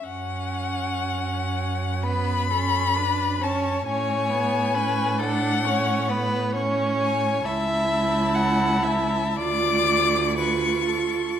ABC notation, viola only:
X:1
M:4/4
L:1/8
Q:1/4=66
K:F#m
V:1 name="Viola"
C4 B, C D C | C B, C D C B, C2 | [K:A] E4 =F2 F2 |]